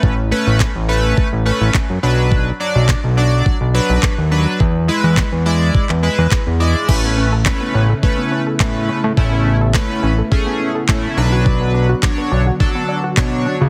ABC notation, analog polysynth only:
X:1
M:4/4
L:1/8
Q:1/4=105
K:A
V:1 name="Analog polysynth"
[A,CB] [A,CB] z [A,CB] z [A,CB] z [F,DB]- | [F,DB] [F,Dd] z [F,Dd] z [F,DB] z [F,DB] | z [G,EB] z [G,Ed] z [G,EB] z [G,Ed] | [A,CB] z [A,CB] z [A,CB] z [A,CB] z |
[A,CE] z [A,CB] z [A,CG] z [A,CE] [F,DB]- | [F,DB] z [F,Dc] z [F,DA] z [F,Dc] z |]